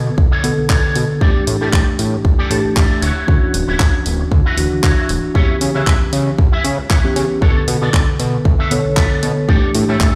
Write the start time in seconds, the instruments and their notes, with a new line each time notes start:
Already playing: tine electric piano D3 B3 A4
0.06 muted clean electric guitar stroke
0.17 analog synth bass B1, muted clean electric guitar stroke, kick
0.31 clean electric guitar D4 A4 C#5
0.43 analog synth bass B2, tine electric piano D3 B3 A4, open hi-hat
0.57 analog synth bass B1, muted clean electric guitar stroke
0.69 analog synth bass B1, clean electric guitar D4 A4 C#5, kick, clap
0.95 analog synth bass B2, open hi-hat
1.20 analog synth bass A1, tine electric piano E3 A3 D4 G4, clean electric guitar G4 A4 D5, kick
1.47 analog synth bass A2, open hi-hat
1.61 analog synth bass A2, clean electric guitar G4 A4 D5
1.73 analog synth bass A1, kick, clap
1.99 analog synth bass A2, open hi-hat
2.13 muted clean electric guitar stroke
2.24 analog synth bass A1, muted clean electric guitar stroke, kick
2.38 clean electric guitar G4 A4 D5
2.50 analog synth bass A2, tine electric piano E3 A3 D4 G4, clean electric guitar A5, open hi-hat
2.64 analog synth bass A1, muted clean electric guitar stroke
2.76 analog synth bass A1, clean electric guitar G4 A4 D5 E5, kick, clap
3.02 analog synth bass D1, clean electric guitar E4 F#4 C#5, open hi-hat
3.27 analog synth bass D2, tine electric piano E3 C#4 D4 F#4, kick
3.54 analog synth bass D1, open hi-hat
3.68 analog synth bass D1, clean electric guitar E4 F#4 C#5
3.80 analog synth bass D2, kick, clap
4.06 analog synth bass D1, open hi-hat
4.19 muted clean electric guitar stroke
4.31 analog synth bass D2, muted clean electric guitar stroke, kick
4.45 clean electric guitar E4 F#4 B4
4.56 analog synth bass D1, tine electric piano E3 D4 F#4, open hi-hat
4.71 analog synth bass D2, muted clean electric guitar stroke
4.83 analog synth bass D2, clean electric guitar E4 F#4 C#5, kick, clap
5.09 analog synth bass D1, open hi-hat
5.34 analog synth bass C#2, tine electric piano E3 B3 C#4 G4, clean electric guitar E4 B4 C#5, kick
5.61 analog synth bass C#3, open hi-hat
5.75 analog synth bass C#3, clean electric guitar E4 B4 E5
5.87 analog synth bass C#2, kick, clap
6.13 analog synth bass C#3, open hi-hat
6.26 muted clean electric guitar stroke
6.38 analog synth bass C#2, muted clean electric guitar stroke, kick
6.52 clean electric guitar E4 B4 E5
6.64 analog synth bass C#3, open hi-hat
6.78 analog synth bass C#2, muted clean electric guitar stroke
6.89 analog synth bass C#2, clean electric guitar E4 B4 C#5, kick, clap
7.04 tine electric piano E3 B3 C#4 G4
7.16 analog synth bass C#3, open hi-hat
7.41 analog synth bass B1, tine electric piano D3 B3 A4, clean electric guitar D4 A4 C#5, kick
7.68 analog synth bass B2, open hi-hat
7.81 analog synth bass B2, clean electric guitar D4 A4 D5
7.94 analog synth bass B1, kick, clap
8.20 analog synth bass B2, open hi-hat
8.33 muted clean electric guitar stroke
8.45 analog synth bass B1, muted clean electric guitar stroke, kick
8.59 clean electric guitar D4 A4 E5
8.70 analog synth bass B2, tine electric piano D3 B3 A4 C#5, open hi-hat
8.85 analog synth bass B1, muted clean electric guitar stroke
8.96 analog synth bass B1, clean electric guitar D4 A4 B4, kick, clap
9.23 analog synth bass B2, open hi-hat
9.48 analog synth bass A1, tine electric piano E3 A3 D4, clean electric guitar G4 A4 D5, kick
9.75 analog synth bass A2, open hi-hat
9.89 analog synth bass A2, clean electric guitar G4 A4 E5
10.00 analog synth bass A1, kick, clap